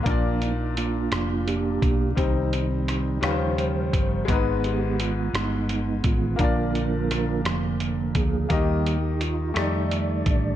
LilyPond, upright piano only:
<<
  \new Staff \with { instrumentName = "Upright piano" } { \time 6/8 \key bes \mixolydian \tempo 4. = 57 <bes d' f' d''>2. | <g c' ees' c''>4. <g des' f' ces'' c''>4. | <aes ces' ees' ces''>2. | <bes d' f' d''>2. |
<bes ees' g' ees''>4. <a ees' g' d''>4. | }
  \new Staff \with { instrumentName = "Upright piano" } { \clef bass \time 6/8 \key bes \mixolydian bes,4. r4. | c4. ees4. | aes,4. r4. | bes,4. r4. |
ees4. r4. | }
>>